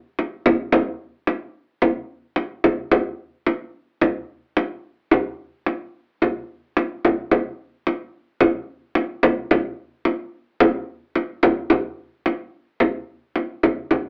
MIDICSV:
0, 0, Header, 1, 2, 480
1, 0, Start_track
1, 0, Tempo, 549451
1, 1579, Time_signature, 4, 2, 24, 8
1, 12310, End_track
2, 0, Start_track
2, 0, Title_t, "Frame drum"
2, 163, Note_on_c, 9, 64, 60
2, 251, Note_off_c, 9, 64, 0
2, 400, Note_on_c, 9, 64, 96
2, 487, Note_off_c, 9, 64, 0
2, 633, Note_on_c, 9, 64, 99
2, 720, Note_off_c, 9, 64, 0
2, 1112, Note_on_c, 9, 64, 70
2, 1199, Note_off_c, 9, 64, 0
2, 1588, Note_on_c, 9, 64, 88
2, 1676, Note_off_c, 9, 64, 0
2, 2062, Note_on_c, 9, 64, 71
2, 2150, Note_off_c, 9, 64, 0
2, 2306, Note_on_c, 9, 64, 83
2, 2393, Note_off_c, 9, 64, 0
2, 2546, Note_on_c, 9, 64, 94
2, 2634, Note_off_c, 9, 64, 0
2, 3027, Note_on_c, 9, 64, 69
2, 3114, Note_off_c, 9, 64, 0
2, 3507, Note_on_c, 9, 64, 90
2, 3594, Note_off_c, 9, 64, 0
2, 3990, Note_on_c, 9, 64, 74
2, 4077, Note_off_c, 9, 64, 0
2, 4467, Note_on_c, 9, 64, 88
2, 4555, Note_off_c, 9, 64, 0
2, 4949, Note_on_c, 9, 64, 66
2, 5036, Note_off_c, 9, 64, 0
2, 5432, Note_on_c, 9, 64, 79
2, 5520, Note_off_c, 9, 64, 0
2, 5912, Note_on_c, 9, 64, 74
2, 5999, Note_off_c, 9, 64, 0
2, 6156, Note_on_c, 9, 64, 80
2, 6243, Note_off_c, 9, 64, 0
2, 6389, Note_on_c, 9, 64, 81
2, 6477, Note_off_c, 9, 64, 0
2, 6873, Note_on_c, 9, 64, 68
2, 6961, Note_off_c, 9, 64, 0
2, 7343, Note_on_c, 9, 64, 94
2, 7430, Note_off_c, 9, 64, 0
2, 7821, Note_on_c, 9, 64, 70
2, 7908, Note_off_c, 9, 64, 0
2, 8063, Note_on_c, 9, 64, 94
2, 8150, Note_off_c, 9, 64, 0
2, 8307, Note_on_c, 9, 64, 99
2, 8394, Note_off_c, 9, 64, 0
2, 8781, Note_on_c, 9, 64, 66
2, 8868, Note_off_c, 9, 64, 0
2, 9263, Note_on_c, 9, 64, 105
2, 9351, Note_off_c, 9, 64, 0
2, 9745, Note_on_c, 9, 64, 66
2, 9832, Note_off_c, 9, 64, 0
2, 9984, Note_on_c, 9, 64, 100
2, 10071, Note_off_c, 9, 64, 0
2, 10221, Note_on_c, 9, 64, 94
2, 10308, Note_off_c, 9, 64, 0
2, 10709, Note_on_c, 9, 64, 66
2, 10796, Note_off_c, 9, 64, 0
2, 11183, Note_on_c, 9, 64, 83
2, 11270, Note_off_c, 9, 64, 0
2, 11667, Note_on_c, 9, 64, 61
2, 11755, Note_off_c, 9, 64, 0
2, 11910, Note_on_c, 9, 64, 80
2, 11997, Note_off_c, 9, 64, 0
2, 12149, Note_on_c, 9, 64, 85
2, 12237, Note_off_c, 9, 64, 0
2, 12310, End_track
0, 0, End_of_file